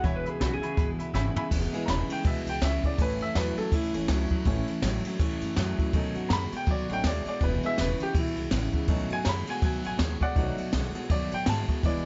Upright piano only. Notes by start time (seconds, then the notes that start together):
0.04 E5 G#5 B5
0.25 E5 G#5 B5
0.40 E5 G#5 B5
0.62 E5 G#5 B5
0.76 E5 G#5 B5
0.99 E5 G#5 B5
1.14 E5 G#5 B5
1.36 E5 G#5 B5
1.73 G#3 B3 E4
1.85 A#5
1.90 B5
2.12 G5
2.25 G#3 B3 E4 E5
2.49 G5
2.65 E5
2.86 D5
2.99 A3 C#4 E4 B4
3.22 E5
3.37 B4
3.58 A4
3.74 E4
3.94 A3 C#4 E4
4.46 A3 C#4 E4
5.94 A3 C#4 D#4
6.29 A#5
6.33 B5
6.56 G5
6.71 D5
6.91 A3 C#4 D#4 G5
7.07 D5
7.29 D5
7.43 B4
7.64 G#3 B3 E4 E5
7.80 B4
8.03 G4
8.18 E4
8.88 A3 C#4 D#4
9.13 G#5
9.24 A#5
9.29 B5
9.50 G#5
9.65 G#5
9.86 G#5
10.22 D5 F#5
10.35 A3 D#4 C#5
11.11 D5
11.34 G5
11.45 G#5
11.49 A5
11.84 G#3 B3 E4 D5